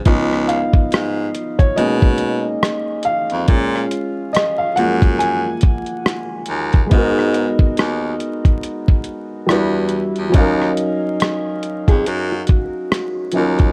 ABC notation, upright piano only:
X:1
M:4/4
L:1/16
Q:"Swing 16ths" 1/4=70
K:G#dor
V:1 name="Upright piano"
z2 e4- e c d6 e2- | e4 d e f2 g6 z2 | [G,B,DFA]12 [=G,=D=EFB]4 | [F,CDAe]12- [F,CDAe]2 [F,CDEA]2 |]
V:2 name="Upright piano"
[E,B,D]8 [G,A,CD]2 z6 | [G,CE]6 [E,G,A,]8- [E,G,A,]2 | z16 | z16 |]